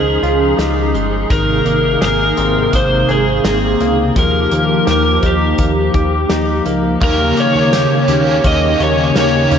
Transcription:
0.00 0.19 C#2 medium
0.00 1.30 D#3 medium
0.00 1.27 F3 medium
0.00 0.94 G#3 medium
0.00 1.27 C#4 medium
0.00 0.58 D#4 medium
0.00 4.12 D#4 medium
0.00 0.22 F4 medium
0.00 0.58 G#4 medium
0.00 4.12 G#4 medium
0.23 0.54 C#2 loud
0.23 1.37 F4 medium
0.23 closed hi-hat soft
0.58 0.96 C#2 medium
0.58 2.37 D#4 medium
0.58 0.92 G4 medium
0.58 snare medium
0.58 closed hi-hat medium
0.94 1.26 G1 medium
0.94 1.65 G#3 medium
0.94 closed hi-hat soft
1.30 1.62 G#1 medium
1.30 4.13 C3 medium
1.30 4.16 D#3 medium
1.30 6.97 A#3 medium
1.30 2.04 A#4 medium
1.30 kick loud
1.30 closed hi-hat medium
1.66 1.97 G#1 loud
1.66 2.72 A#3 medium
1.66 closed hi-hat medium
2.01 2.33 G#1 loud
2.01 3.07 G#4 medium
2.01 2.77 A#4 medium
2.01 snare loud
2.01 closed hi-hat medium
2.37 2.69 G#1 loud
2.37 3.43 C4 medium
2.37 closed hi-hat medium
2.73 3.05 G#1 loud
2.73 3.80 A#3 medium
2.73 3.11 C5 medium
2.73 kick medium
2.73 closed hi-hat medium
3.09 3.41 G#1 medium
3.09 4.23 G#4 medium
3.09 3.46 G#4 medium
3.09 closed hi-hat soft
3.44 3.76 G#1 loud
3.44 4.23 C4 medium
3.44 3.96 G#4 medium
3.44 snare loud
3.44 closed hi-hat medium
3.80 4.12 C#2 medium
3.80 4.52 A#3 medium
3.80 closed hi-hat soft
4.15 4.48 D#2 loud
4.15 6.99 F3 medium
4.15 7.02 F3 medium
4.15 6.99 D#4 medium
4.15 6.99 G4 medium
4.15 4.90 A#4 medium
4.15 kick medium
4.15 closed hi-hat medium
4.51 4.83 D#2 medium
4.51 5.58 A#3 soft
4.51 closed hi-hat medium
4.87 5.19 D#2 loud
4.87 5.94 G4 medium
4.87 snare loud
4.87 closed hi-hat medium
4.91 5.26 A#4 medium
5.23 5.54 D#2 loud
5.23 6.30 D#4 medium
5.23 6.63 G4 medium
5.23 kick medium
5.23 closed hi-hat medium
5.58 5.90 D#2 loud
5.58 6.66 A#3 medium
5.58 kick medium
5.58 closed hi-hat medium
5.94 6.26 D#2 loud
5.94 7.73 G4 medium
5.94 kick medium
5.94 closed hi-hat soft
6.29 6.62 D#2 medium
6.29 8.08 D#4 medium
6.29 snare medium
6.29 closed hi-hat medium
6.66 6.97 C#2 medium
6.66 7.01 A#3 medium
6.66 closed hi-hat soft
7.01 7.33 D#2 loud
7.01 9.59 C#3 medium
7.01 8.13 D#3 medium
7.01 7.36 A#3 medium
7.01 9.59 A#3 medium
7.01 8.09 A#3 medium
7.01 8.09 C#4 medium
7.01 9.59 D#4 medium
7.01 9.59 G4 medium
7.01 8.07 G4 medium
7.01 7.40 A#4 medium
7.01 kick loud
7.01 crash medium
7.37 8.43 A#3 medium
7.37 8.47 C#5 medium
7.37 closed hi-hat medium
7.55 7.87 D#2 loud
7.73 9.59 G4 medium
7.73 snare loud
7.73 closed hi-hat medium
7.73 tambourine medium
8.08 8.40 D#2 loud
8.08 8.79 C#4 medium
8.08 8.45 C#4 soft
8.08 8.44 G4 soft
8.08 closed hi-hat medium
8.12 8.44 A#3 soft
8.43 8.76 D#2 loud
8.43 9.15 D#3 medium
8.43 9.15 A#3 medium
8.43 9.16 A#3 medium
8.43 9.17 C#4 medium
8.43 8.83 D#5 loud
8.43 kick medium
8.43 closed hi-hat medium
8.48 9.19 G4 medium
8.80 9.12 D#2 loud
8.80 9.50 C#4 medium
8.80 9.17 C#5 medium
8.80 closed hi-hat soft
9.15 9.47 D#2 loud
9.15 9.59 D#3 medium
9.15 9.59 A#3 medium
9.15 9.59 C#4 medium
9.15 9.59 C#5 loud
9.15 snare loud
9.15 closed hi-hat medium
9.15 tambourine medium
9.20 9.59 G4 medium
9.51 9.59 D#2 loud
9.51 9.59 C#4 medium
9.51 closed hi-hat medium

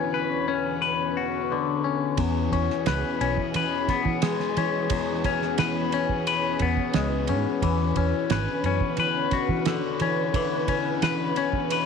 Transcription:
0.00 2.15 E2 medium
0.00 2.18 E2 medium
0.00 2.18 B2 medium
0.00 0.48 D3 medium
0.00 2.15 D3 medium
0.00 1.16 E3 medium
0.00 0.48 C#4 medium
0.00 2.17 C#4 medium
0.00 0.14 F#4 medium
0.00 2.14 B4 medium
0.14 0.81 B4 medium
0.48 1.84 C#4 medium
0.82 2.56 B4 medium
1.17 2.19 F#4 medium
1.52 2.19 D3 medium
1.84 2.52 C#4 medium
2.17 2.48 E2 loud
2.17 3.89 E2 medium
2.17 11.86 E2 medium
2.17 11.86 B2 medium
2.17 7.59 E3 medium
2.17 10.31 C#4 medium
2.17 7.59 G#4 medium
2.17 kick loud
2.17 ride medium
2.52 2.67 E2 medium
2.52 3.21 C#4 medium
2.52 kick medium
2.52 ride medium
2.70 snare soft
2.86 3.02 C#2 loud
2.86 3.56 B4 medium
2.86 snare loud
2.86 ride medium
3.21 3.36 B1 medium
3.21 4.57 C#4 medium
3.21 ride medium
3.38 kick medium
3.54 3.85 E3 medium
3.54 5.28 B4 medium
3.54 ride medium
3.88 5.97 B3 medium
3.88 kick medium
3.88 snare soft
3.88 ride medium
4.05 4.35 E3 medium
4.05 kick medium
4.22 5.93 G#3 medium
4.22 snare loud
4.22 ride loud
4.40 snare soft
4.57 4.87 E3 loud
4.57 5.25 C#4 medium
4.57 ride medium
4.90 6.61 E2 medium
4.90 kick loud
4.90 ride loud
5.24 5.93 C#4 medium
5.24 kick medium
5.24 ride medium
5.42 snare soft
5.58 5.89 E3 medium
5.58 6.27 B4 medium
5.58 snare loud
5.58 ride medium
5.92 7.29 C#4 medium
5.92 ride medium
6.09 kick medium
6.27 8.00 B4 medium
6.27 ride medium
6.59 6.75 E2 medium
6.59 8.00 B3 medium
6.59 kick medium
6.59 ride medium
6.77 kick medium
6.93 7.31 C#2 loud
6.93 7.63 G#3 medium
6.93 snare loud
6.93 ride medium
7.27 7.44 G#2 loud
7.27 7.97 C#4 medium
7.27 ride medium
7.62 7.92 E2 loud
7.62 11.86 D3 medium
7.62 9.33 E3 medium
7.62 11.86 B4 medium
7.62 kick loud
7.62 ride loud
7.96 8.11 E2 loud
7.96 8.65 C#4 medium
7.96 kick medium
7.96 ride medium
8.30 8.46 G#1 loud
8.30 8.99 B4 medium
8.30 snare loud
8.30 ride medium
8.64 8.79 F#2 medium
8.64 10.01 C#4 medium
8.64 ride medium
8.81 kick medium
8.97 9.28 E3 medium
8.97 10.69 B4 medium
8.97 ride medium
9.31 11.03 F#4 medium
9.31 kick medium
9.31 snare soft
9.31 ride medium
9.49 9.80 E3 medium
9.49 kick medium
9.65 11.37 D3 medium
9.65 snare loud
9.65 ride medium
10.00 10.31 E3 loud
10.00 10.68 C#4 medium
10.00 ride medium
10.34 11.86 E3 medium
10.34 11.86 B3 medium
10.34 kick loud
10.34 ride loud
10.68 11.36 C#4 medium
10.68 kick medium
10.68 ride medium
11.02 11.33 E3 loud
11.02 11.71 B4 medium
11.02 snare loud
11.02 ride medium
11.36 11.86 C#4 medium
11.36 ride medium
11.53 kick medium
11.70 11.86 B4 medium
11.70 ride medium

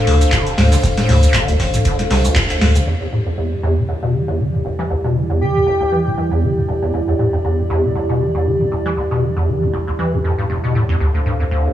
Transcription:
0.00 2.83 D4 medium
0.00 2.83 A4 medium
0.00 2.83 C5 medium
0.00 2.83 F5 medium
0.07 0.25 D2 medium
0.07 0.15 D3 medium
0.07 open hi-hat loud
0.07 ride medium
0.21 0.34 D2 medium
0.21 ride soft
0.21 cabasa medium
0.32 0.48 D3 medium
0.32 kick loud
0.32 snare loud
0.32 clap loud
0.32 closed hi-hat medium
0.32 ride medium
0.32 cabasa medium
0.47 0.53 C2 medium
0.47 closed hi-hat medium
0.47 cabasa soft
0.58 0.63 D1 medium
0.58 0.76 D2 medium
0.58 snare loud
0.58 snare medium
0.58 mid tom medium
0.58 open hi-hat medium
0.72 0.76 D3 loud
0.72 snare loud
0.72 closed hi-hat soft
0.72 open hi-hat medium
0.72 cabasa medium
0.83 0.88 C2 medium
0.83 kick loud
0.83 snare loud
0.83 closed hi-hat medium
0.83 open hi-hat medium
0.83 cabasa medium
0.97 1.10 A2 medium
0.97 snare medium
0.97 snare loud
0.97 closed hi-hat medium
0.97 open hi-hat medium
0.97 cabasa soft
1.09 1.27 D2 loud
1.09 1.17 D3 medium
1.09 snare loud
1.09 mid tom medium
1.09 open hi-hat loud
1.09 open hi-hat medium
1.23 1.36 D2 medium
1.23 snare soft
1.23 closed hi-hat soft
1.23 cabasa medium
1.34 1.50 D3 medium
1.34 kick loud
1.34 clap loud
1.34 closed hi-hat medium
1.34 ride medium
1.34 cabasa medium
1.48 1.55 C2 medium
1.48 1.56 D2 loud
1.48 closed hi-hat medium
1.48 ride soft
1.48 cabasa soft
1.60 1.64 D1 medium
1.60 1.78 A1 loud
1.60 kick medium
1.60 snare loud
1.60 open hi-hat medium
1.60 ride medium
1.74 1.78 C2 medium
1.74 closed hi-hat soft
1.74 mid tom medium
1.74 cabasa medium
1.85 2.01 D3 medium
1.85 kick loud
1.85 closed hi-hat medium
1.85 ride medium
1.85 cabasa medium
1.99 2.05 C2 medium
1.99 snare soft
1.99 closed hi-hat medium
1.99 ride soft
1.99 cabasa soft
2.10 2.29 C2 medium
2.10 2.18 C3 medium
2.10 snare medium
2.10 snare loud
2.10 open hi-hat medium
2.10 open hi-hat loud
2.25 2.38 D2 medium
2.25 closed hi-hat soft
2.25 cabasa medium
2.35 2.44 G2 medium
2.35 kick loud
2.35 clap loud
2.35 closed hi-hat medium
2.35 ride medium
2.35 cabasa medium
2.50 2.63 D2 medium
2.50 clap soft
2.50 closed hi-hat medium
2.50 cabasa soft
2.61 2.80 D2 loud
2.61 2.69 A2 medium
2.61 snare medium
2.61 open hi-hat medium
2.61 ride medium
2.75 2.82 D3 medium
2.75 closed hi-hat soft
2.75 cabasa medium
2.87 2.95 E2 medium
2.87 10.98 E2 medium
2.87 10.96 E4 medium
2.87 10.96 G4 medium
2.87 10.96 D5 medium
3.01 3.07 E2 medium
3.12 3.20 A2 medium
3.26 3.30 F2 medium
3.38 3.53 E2 medium
3.52 3.56 G2 medium
3.63 3.79 E2 loud
3.77 3.83 D3 medium
3.89 3.93 E2 medium
4.03 4.16 B2 medium
4.14 4.22 E3 medium
4.28 4.41 E2 medium
4.39 4.55 E3 medium
4.53 4.60 D2 medium
4.65 4.69 E1 medium
4.79 4.83 E3 loud
4.90 4.95 D2 medium
5.04 5.17 B2 medium
5.16 5.23 E3 medium
5.30 5.43 E2 medium
5.41 5.57 E3 medium
5.41 6.13 G4 medium
5.55 5.61 D2 medium
5.66 5.71 E1 medium
5.81 5.84 D2 medium
5.92 6.07 E3 medium
6.06 6.12 D2 medium
6.17 6.29 E3 medium
6.31 6.44 E2 medium
6.43 6.58 E3 medium
6.57 6.63 D2 medium
6.68 6.73 E1 medium
6.82 6.92 E2 medium
6.94 7.01 E2 medium
7.08 7.14 E2 medium
7.19 7.27 A2 medium
7.33 7.37 F2 medium
7.45 7.60 E2 medium
7.59 7.62 G2 medium
7.70 7.85 E2 loud
7.84 7.90 D3 medium
7.95 8.00 E2 medium
8.09 8.22 B2 medium
8.21 8.28 E3 medium
8.35 8.48 E2 medium
8.46 8.62 E3 medium
8.60 8.66 D2 medium
8.72 8.76 E1 medium
8.86 8.89 E3 loud
8.97 9.02 D2 medium
9.11 9.24 B2 medium
9.23 9.30 E3 medium
9.36 9.49 E2 medium
9.48 9.63 E3 medium
9.62 9.68 D2 medium
9.73 9.78 E1 medium
9.87 9.91 D2 medium
9.99 10.14 E3 medium
10.13 10.19 D2 medium
10.24 10.32 F2 medium
10.38 10.44 G2 medium
10.50 10.57 E1 medium
10.64 10.73 B2 medium
10.75 10.83 A2 medium
10.89 10.95 E2 loud
11.00 11.08 D2 medium
11.00 11.73 D2 medium
11.00 11.73 D4 medium
11.00 11.73 A4 medium
11.00 11.73 C5 medium
11.00 11.73 F5 medium
11.14 11.21 D2 medium
11.26 11.34 G2 medium
11.40 11.44 E2 medium
11.51 11.67 D2 medium
11.65 11.69 F2 medium

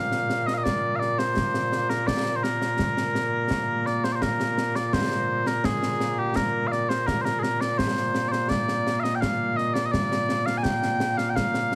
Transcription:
0.00 11.75 A#2 medium
0.00 11.75 A#3 medium
0.00 0.47 F5 loud
0.12 snare medium
0.30 snare medium
0.47 0.54 D#5 medium
0.47 snare medium
0.54 0.64 D#5 medium
0.54 0.58 F5 medium
0.64 0.96 D5 medium
0.64 concert bass drum soft
0.64 snare medium
0.96 1.18 D5 medium
0.96 0.99 F5 medium
1.01 snare soft
1.18 1.89 C5 medium
1.18 snare medium
1.37 concert bass drum medium
1.37 snare medium
1.54 snare medium
1.72 snare medium
1.89 2.07 A#4 medium
1.89 snare medium
2.07 2.36 D5 medium
2.07 concert bass drum soft
2.07 snare medium
2.26 snare medium
2.36 2.43 C5 medium
2.43 3.86 A#4 medium
2.43 snare medium
2.61 snare medium
2.79 concert bass drum medium
2.79 snare medium
2.97 snare medium
3.15 snare medium
3.51 concert bass drum soft
3.51 snare loud
3.86 4.04 D5 medium
3.86 snare soft
4.04 4.12 C5 medium
4.04 snare medium
4.12 4.22 C5 medium
4.12 4.15 D5 medium
4.22 4.76 A#4 medium
4.22 concert bass drum soft
4.22 snare medium
4.40 snare medium
4.58 snare medium
4.75 4.86 D5 medium
4.75 snare medium
4.86 4.93 D5 medium
4.93 5.47 C5 medium
4.93 concert bass drum medium
4.93 snare loud
5.11 snare medium
5.46 5.65 A#4 medium
5.46 snare medium
5.64 6.19 G#4 medium
5.64 concert bass drum medium
5.64 snare medium
5.83 snare medium
6.00 snare medium
6.19 6.36 G4 medium
6.36 6.67 A#4 medium
6.36 concert bass drum medium
6.36 snare loud
6.67 6.72 F5 medium
6.72 6.89 D5 medium
6.72 snare soft
6.89 7.06 C5 medium
6.89 snare medium
7.06 7.21 A#4 loud
7.06 concert bass drum medium
7.06 snare medium
7.21 7.39 A#4 medium
7.21 7.24 C5 medium
7.25 snare medium
7.39 7.43 G#4 medium
7.39 7.61 A#4 medium
7.43 snare medium
7.61 7.78 D5 medium
7.61 snare medium
7.78 8.28 C5 medium
7.78 concert bass drum soft
7.78 snare medium
7.97 snare medium
8.15 snare medium
8.28 8.49 C5 medium
8.28 8.32 D5 medium
8.33 snare medium
8.49 9.00 D5 loud
8.49 concert bass drum soft
8.49 snare medium
8.68 snare medium
8.87 snare medium
9.00 9.15 D#5 medium
9.00 9.03 F5 medium
9.04 snare medium
9.15 9.21 G5 medium
9.21 9.56 F5 loud
9.21 concert bass drum soft
9.21 snare medium
9.56 9.74 D#5 medium
9.56 snare soft
9.74 9.86 D5 medium
9.74 snare medium
9.86 9.92 D#5 medium
9.92 10.46 D5 loud
9.92 concert bass drum medium
9.92 snare medium
10.12 snare medium
10.29 snare medium
10.46 10.58 F5 loud
10.46 snare medium
10.58 10.63 G#5 medium
10.63 11.17 G5 loud
10.63 concert bass drum medium
10.63 snare medium
10.83 snare medium
11.00 snare medium
11.17 11.30 F5 medium
11.17 snare medium
11.30 11.36 G5 medium
11.36 11.75 F5 loud
11.36 concert bass drum soft
11.36 snare medium
11.54 snare medium
11.72 snare medium

